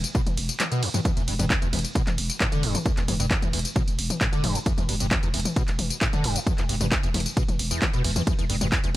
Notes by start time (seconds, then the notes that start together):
0.04 closed hi-hat, tambourine
0.15 B2, kick, closed hi-hat, tambourine
0.26 E1, closed hi-hat, mid tom, tambourine
0.37 E1, open hi-hat, ride
0.49 closed hi-hat, tambourine
0.60 G3, clap, closed hi-hat, mid tom, tambourine
0.71 B2, closed hi-hat, tambourine
0.82 E2, open hi-hat, ride
0.94 G2, closed hi-hat, mid tom, tambourine
1.05 E2, kick, closed hi-hat, mid tom, tambourine
1.17 E1 E2, closed hi-hat, tambourine
1.28 E1 G2, open hi-hat, ride
1.39 E1 G2, closed hi-hat, mid tom, tambourine
1.50 E2, kick, clap, closed hi-hat, tambourine
1.62 E1 E2, closed hi-hat, tambourine
1.73 E1 E2, open hi-hat, mid tom, ride
1.79 closed hi-hat
1.85 closed hi-hat, tambourine
1.95 B2, kick, closed hi-hat, tambourine
2.07 E1, clap, closed hi-hat, mid tom, tambourine
2.18 E1, open hi-hat, ride
2.30 closed hi-hat, tambourine
2.40 A2, kick, clap, closed hi-hat, mid tom, tambourine
2.52 E1 D3, closed hi-hat, tambourine
2.63 E1 G2, open hi-hat, ride
2.75 E2, closed hi-hat, mid tom, tambourine
2.85 E2, kick, closed hi-hat, tambourine
2.97 E1 E2, clap, closed hi-hat, tambourine
3.08 E1 G2, open hi-hat, mid tom, ride
3.20 E1 G2, closed hi-hat, tambourine
3.31 E2, kick, clap, closed hi-hat, tambourine
3.42 E1 E2, closed hi-hat, mid tom, tambourine
3.53 E1 E2, open hi-hat, ride
3.59 closed hi-hat
3.65 closed hi-hat, tambourine
3.76 B2, kick, closed hi-hat, mid tom, tambourine
3.87 E1, closed hi-hat, tambourine
3.98 E1, open hi-hat, ride
4.10 closed hi-hat, mid tom, tambourine
4.21 A2, kick, clap, closed hi-hat, tambourine
4.32 E1 D3, closed hi-hat, tambourine
4.43 E1 G2, open hi-hat, mid tom, ride
4.55 E2, closed hi-hat, tambourine
4.66 E2, kick, closed hi-hat, tambourine
4.78 E1 E2, closed hi-hat, mid tom, tambourine
4.89 E1 G2, open hi-hat, ride
5.00 E1 G2, closed hi-hat, tambourine
5.11 E2, kick, clap, closed hi-hat, mid tom, tambourine
5.23 E1 E2, closed hi-hat, tambourine
5.34 E1 E2, open hi-hat, ride
5.40 closed hi-hat
5.45 closed hi-hat, mid tom, tambourine
5.56 B2, kick, closed hi-hat, tambourine
5.68 E1, clap, closed hi-hat, tambourine
5.79 E1, open hi-hat, mid tom, ride
5.90 closed hi-hat, tambourine
6.01 A2, kick, clap, closed hi-hat, tambourine
6.13 E1 D3, closed hi-hat, mid tom, tambourine
6.24 E1 G2, open hi-hat, ride
6.36 E2, closed hi-hat, tambourine
6.46 E2, kick, closed hi-hat, mid tom, tambourine
6.58 E1 E2, clap, closed hi-hat, tambourine
6.69 E1 G2, open hi-hat, ride
6.81 E1 G2, closed hi-hat, mid tom, tambourine
6.92 E2, kick, clap, closed hi-hat, tambourine
7.03 E1 E2, closed hi-hat, tambourine
7.14 E1 E2, open hi-hat, mid tom, ride
7.20 closed hi-hat
7.26 closed hi-hat, tambourine
7.37 B2, kick, closed hi-hat, tambourine
7.48 E1, closed hi-hat, mid tom, tambourine
7.59 E1, open hi-hat, ride
7.71 E2, closed hi-hat, tambourine
7.82 E3, kick, clap, closed hi-hat, mid tom, tambourine
7.93 E1 B2, closed hi-hat, tambourine
8.04 E1 E2, open hi-hat, ride
8.16 E2, closed hi-hat, mid tom, tambourine
8.27 E2, kick, closed hi-hat, mid tom, tambourine
8.39 E1 E2, closed hi-hat, tambourine
8.49 E1 G2, open hi-hat, ride
8.61 E1 G2, closed hi-hat, mid tom, tambourine
8.72 E2, kick, clap, closed hi-hat, tambourine
8.84 E1 E2, closed hi-hat, tambourine